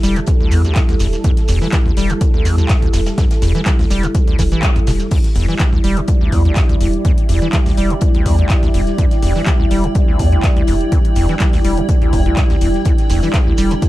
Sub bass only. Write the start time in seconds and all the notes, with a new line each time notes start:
0.03 E1
0.52 E2
1.00 E1
1.49 E1
1.97 E1
2.45 E2
2.94 E1
3.42 E1
3.90 E1
4.39 E1
4.87 E1
5.36 E1
5.84 E1
6.32 E2
6.81 E1
7.29 E1
7.78 E1
8.26 E2
8.74 E1
9.23 E1
9.71 E1
10.19 E2
10.68 E1
11.16 E1
11.65 E1
12.13 E1
12.61 E1
13.10 E1
13.58 E1